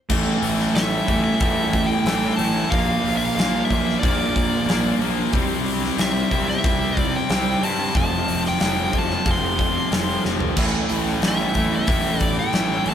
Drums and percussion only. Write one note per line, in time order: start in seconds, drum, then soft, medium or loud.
0.10 kick loud
0.10 crash loud
0.43 open hi-hat medium
0.60 snare soft
0.76 snare loud
0.76 open hi-hat medium
1.08 kick medium
1.08 open hi-hat medium
1.40 kick loud
1.40 open hi-hat medium
1.73 kick medium
1.73 open hi-hat medium
2.06 snare loud
2.06 open hi-hat medium
2.38 open hi-hat medium
2.72 kick loud
2.72 open hi-hat medium
3.05 open hi-hat medium
3.39 snare loud
3.39 open hi-hat medium
3.70 kick medium
3.70 open hi-hat medium
3.89 snare soft
4.03 kick loud
4.03 open hi-hat loud
4.36 kick medium
4.36 open hi-hat medium
4.69 snare loud
4.69 open hi-hat medium
5.01 open hi-hat medium
5.33 kick loud
5.33 open hi-hat medium
5.66 open hi-hat medium
5.84 snare soft
5.98 snare loud
5.98 open hi-hat medium
6.31 kick medium
6.31 open hi-hat medium
6.49 snare soft
6.64 kick loud
6.64 open hi-hat medium
6.97 kick medium
6.97 open hi-hat medium
7.29 snare loud
7.29 open hi-hat medium
7.63 open hi-hat medium
7.95 kick loud
7.95 open hi-hat medium
8.28 open hi-hat medium
8.45 snare soft
8.60 snare loud
8.60 open hi-hat medium
8.93 kick medium
8.93 open hi-hat medium
9.11 snare soft
9.26 kick loud
9.26 open hi-hat medium
9.59 kick medium
9.59 open hi-hat medium
9.92 snare loud
9.92 open hi-hat medium
10.25 snare medium
10.40 floor tom loud
10.57 kick loud
10.57 crash loud
10.89 open hi-hat medium
11.07 snare soft
11.22 snare loud
11.22 open hi-hat loud
11.54 kick medium
11.54 open hi-hat medium
11.87 kick loud
11.87 open hi-hat loud
12.20 kick medium
12.20 open hi-hat medium
12.53 snare loud
12.53 open hi-hat medium
12.86 open hi-hat medium